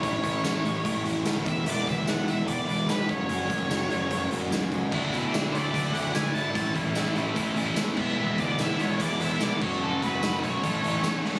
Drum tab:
CC |----------------|----------------|----------------|x---------------|
HH |x-x-x-x-x-x-x-x-|x-x-x-x-x-x-x-x-|x-x-x-x-x-x-x-x-|--x-x-x-x-x-x-x-|
TB |----x-------x---|----x-------x---|----x-------x---|----x-------x---|
SD |----o-------o---|----o-------o---|----o-------o---|----o-------o---|
BD |o-o-----o-----o-|--o-----o-----o-|--o-----o-----o-|o-o-----o-------|

CC |--------------x-|--------------x-|----------------|
HH |x-x-x-x-x-x-x---|--x-x-x-x-x-x---|--x-x-x-x-x-x---|
TB |----x-------x---|----x-------x---|----x-------x---|
SD |----o-------o---|----o-------o---|----o-------o-oo|
BD |o-o-----o-----o-|--o-----o-----o-|--o-----o-------|